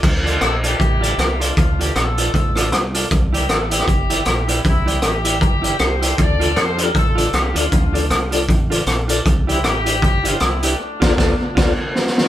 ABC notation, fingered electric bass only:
X:1
M:4/4
L:1/8
Q:"Swing" 1/4=156
K:Dm
V:1 name="Fingered electric bass" clef=bass
D,,2 B,,,2 A,,,2 C,,2 | D,,2 B,,,2 A,,,2 C,,2 | C,,2 A,,,2 G,,,2 B,,,2 | C,,2 A,,,2 G,,,2 C,,2 |
D,,2 F,,2 A,,,2 C,, D,, | D,,2 C,,2 A,,,2 B,,,2 | C,,2 A,,,2 G,,,2 C,,2 | z D,, D,, z D,, z3 |]